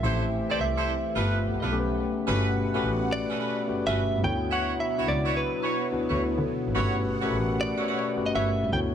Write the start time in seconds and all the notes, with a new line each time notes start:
Already playing: A3 C4 E5
0.02 A1 E3 A3 E4 G4 A4 C5
0.50 C2 E4 G4 A4 C5 D5
0.59 C2 E5
0.77 E4 G4 A4 C5
1.15 G1 F3 A3 B3 F4 G4 A4 B4
1.44 B1
1.62 B1 F4 G4 A4 B4
1.71 C#3 A3 C#4 G4 A4
1.80 B4
2.27 G1 B2 A3 B3 C#4 F#4 G4 A4 B4 F#5
2.74 A1 A3 C#4 F#4 G4 A4 B4
2.84 A1
3.12 D5
3.30 C#4 F#4 A4 B4
3.39 C#4 F#4 A4 B4
3.68 G1 A3 C#4 F#4 G4 B4
3.86 G1 C#4 F#4 A4 B4 E5
4.15 G2
4.24 D2 F#3 B3 D4 E4 F#4 C#5 G5
4.51 E4 F#4 B4 C#5 F#5
4.80 E5
4.98 C#2 B3 D4 E4 F#4 B4 C#5
5.08 C#2 D5
5.25 E4 F#4 B4 C#5
5.37 B4
5.63 E4 F#4 B4 C#5
5.92 D2 B3 D4 E4 F#4 B4
6.09 D2 E4 F#4 B4 C#5
6.38 D3
6.67 G#1
6.75 G1 A3 C#4 F#4 G4 A4 B4 C#5 F#5
7.22 A1 A3 C#4 F#4 G4 A4 A#4 B4 C#5
7.31 A1 B4
7.61 D5
7.78 F#4 A4 B4 C#5
7.88 F#4 A4 B4 C#5
8.17 G1 A3 C#4 F#4 G4 B4
8.26 D#5
8.34 G1 F#4 A4 B4 C#5 E5
8.63 G2
8.71 D2 F#3 B3 D4 E4 F#4 C#5 G5